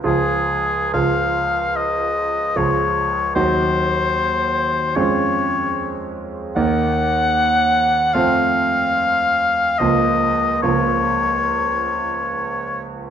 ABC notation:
X:1
M:4/4
L:1/8
Q:1/4=73
K:Bbm
V:1 name="Oboe"
A2 f2 e2 d2 | c4 d3 z | g4 f4 | e2 d4- d z |]
V:2 name="Grand piano"
[D,,F,FA]2 [D,,F,FA]4 [D,,F,FA]2 | [E,,G,EG]4 [F,,A,DF]4 | [E,,B,EB]4 [F,,=A,CF]4 | [D,,F,B,F]2 [D,,F,B,F]6 |]